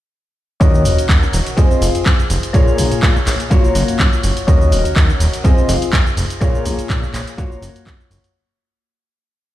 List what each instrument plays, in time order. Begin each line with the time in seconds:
0.60 analog synth bass D#2, grand piano C#4 F#4 A#4 D#5, kick, closed hi-hat, cabasa
0.75 cabasa
0.85 analog synth bass D#1, open hi-hat, cabasa
0.98 analog synth bass D#2, closed hi-hat, cabasa
1.09 analog synth bass D#2, kick, clap, closed hi-hat, cabasa
1.23 cabasa
1.33 analog synth bass D#1, open hi-hat, cabasa
1.46 closed hi-hat, cabasa
1.57 analog synth bass F2, grand piano C4 F4 G#4 D#5, kick, closed hi-hat, cabasa
1.71 cabasa
1.82 analog synth bass F1, open hi-hat, cabasa
1.95 analog synth bass F2, closed hi-hat, cabasa
2.06 analog synth bass F2, kick, clap, closed hi-hat, cabasa
2.19 cabasa
2.30 analog synth bass F1, open hi-hat, cabasa
2.43 closed hi-hat, cabasa
2.53 analog synth bass A#2, grand piano A#3 F4 G#4 C#5, kick, closed hi-hat, cabasa
2.68 cabasa
2.78 analog synth bass A#1, open hi-hat, cabasa
2.92 analog synth bass A#2, closed hi-hat, cabasa
3.03 analog synth bass A#2, kick, clap, closed hi-hat, cabasa
3.16 cabasa
3.27 analog synth bass A#1, clap, open hi-hat, cabasa
3.40 closed hi-hat, cabasa
3.50 analog synth bass F#2, grand piano A#3 F4 F#4 C#5, kick, closed hi-hat, cabasa
3.64 analog synth bass F#1, cabasa
3.75 analog synth bass F#1, open hi-hat, cabasa
3.88 analog synth bass F#2, closed hi-hat, cabasa
3.99 analog synth bass F#2, kick, clap, closed hi-hat, cabasa
4.13 cabasa
4.23 analog synth bass F#1, open hi-hat, cabasa
4.37 closed hi-hat, cabasa
4.47 analog synth bass D#2, grand piano C#4 F#4 A#4 D#5, kick, closed hi-hat, cabasa
4.61 cabasa
4.72 analog synth bass D#1, open hi-hat, cabasa
4.85 analog synth bass D#2, closed hi-hat, cabasa
4.96 analog synth bass D#2, kick, clap, closed hi-hat, cabasa
5.10 cabasa
5.20 analog synth bass D#1, open hi-hat, cabasa
5.33 closed hi-hat, cabasa
5.44 analog synth bass F2, grand piano C4 F4 G#4 D#5, kick, closed hi-hat, cabasa
5.58 cabasa
5.69 analog synth bass F1, open hi-hat, cabasa
5.82 analog synth bass F2, closed hi-hat, cabasa
5.93 analog synth bass F2, kick, clap, closed hi-hat, cabasa
6.07 cabasa
6.17 analog synth bass F1, open hi-hat, cabasa
6.30 closed hi-hat, cabasa
6.41 analog synth bass A#2, grand piano A#3 F4 G#4 C#5, kick, closed hi-hat, cabasa
6.55 cabasa
6.66 analog synth bass A#1, open hi-hat, cabasa
6.79 analog synth bass A#2, closed hi-hat, cabasa
6.90 analog synth bass A#2, kick, clap, closed hi-hat, cabasa
7.03 cabasa
7.14 analog synth bass A#1, clap, open hi-hat, cabasa
7.27 closed hi-hat, cabasa
7.37 analog synth bass F#2, grand piano A#3 F4 F#4 C#5, kick, closed hi-hat, cabasa
7.51 analog synth bass F#1, cabasa
7.62 analog synth bass F#1, open hi-hat, cabasa
7.75 analog synth bass F#2, closed hi-hat, cabasa
7.86 analog synth bass F#2, kick, clap, closed hi-hat, cabasa
8.00 cabasa
8.11 analog synth bass F#1, open hi-hat, cabasa
8.24 closed hi-hat, cabasa